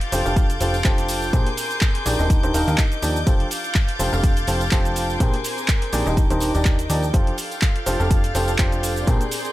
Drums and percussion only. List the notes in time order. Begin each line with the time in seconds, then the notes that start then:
0.01 closed hi-hat
0.12 open hi-hat, tambourine, shaker
0.26 tambourine, shaker
0.36 kick, closed hi-hat, tambourine, shaker
0.50 closed hi-hat, shaker
0.60 open hi-hat, tambourine, shaker
0.74 closed hi-hat, tambourine, shaker
0.84 kick, clap, closed hi-hat, shaker
0.98 closed hi-hat, shaker
1.08 open hi-hat, tambourine, shaker
1.22 tambourine, shaker
1.33 kick, closed hi-hat, tambourine, shaker
1.47 closed hi-hat
1.57 open hi-hat, tambourine, shaker
1.70 closed hi-hat, tambourine, shaker
1.81 kick, clap, closed hi-hat, tambourine, shaker
1.95 closed hi-hat
2.06 open hi-hat, tambourine, shaker
2.19 tambourine, shaker
2.30 kick, closed hi-hat, tambourine, shaker
2.43 closed hi-hat, shaker
2.54 open hi-hat, tambourine, shaker
2.68 closed hi-hat, tambourine, shaker
2.78 kick, clap, closed hi-hat, tambourine, shaker
2.92 closed hi-hat, shaker
3.02 open hi-hat, tambourine, shaker
3.16 tambourine, shaker
3.27 kick, closed hi-hat, tambourine, shaker
3.40 closed hi-hat
3.51 open hi-hat, tambourine, shaker
3.64 closed hi-hat, tambourine, shaker
3.75 kick, clap, closed hi-hat, tambourine, shaker
3.89 closed hi-hat
3.99 open hi-hat, tambourine, shaker
4.13 tambourine, shaker
4.24 kick, closed hi-hat, tambourine, shaker
4.37 closed hi-hat, shaker
4.47 open hi-hat, tambourine, shaker
4.61 closed hi-hat, tambourine, shaker
4.71 kick, clap, closed hi-hat, shaker
4.85 closed hi-hat, shaker
4.96 open hi-hat, tambourine, shaker
5.10 tambourine, shaker
5.20 kick, closed hi-hat, tambourine, shaker
5.34 closed hi-hat
5.44 open hi-hat, tambourine, shaker
5.58 closed hi-hat, tambourine, shaker
5.68 kick, clap, closed hi-hat, tambourine, shaker
5.82 closed hi-hat
5.93 open hi-hat, tambourine, shaker
6.05 tambourine, shaker
6.17 kick, closed hi-hat, tambourine, shaker
6.30 closed hi-hat, shaker
6.40 open hi-hat, tambourine, shaker
6.55 closed hi-hat, tambourine, shaker
6.65 kick, clap, closed hi-hat, shaker
6.79 closed hi-hat, shaker
6.90 open hi-hat, tambourine, shaker
7.02 tambourine, shaker
7.14 kick, closed hi-hat, tambourine, shaker
7.27 closed hi-hat
7.38 open hi-hat, tambourine, shaker
7.51 closed hi-hat, tambourine, shaker
7.62 kick, clap, closed hi-hat, shaker
7.76 closed hi-hat
7.86 open hi-hat, tambourine, shaker
8.00 tambourine, shaker
8.10 kick, closed hi-hat, tambourine, shaker
8.24 closed hi-hat, shaker
8.35 open hi-hat, tambourine, shaker
8.48 closed hi-hat, tambourine, shaker
8.58 kick, clap, closed hi-hat, tambourine, shaker
8.72 closed hi-hat, shaker
8.83 open hi-hat, tambourine, shaker
8.96 tambourine, shaker
9.07 kick, closed hi-hat, tambourine, shaker
9.21 closed hi-hat, shaker
9.31 open hi-hat, tambourine, shaker
9.45 closed hi-hat, tambourine, shaker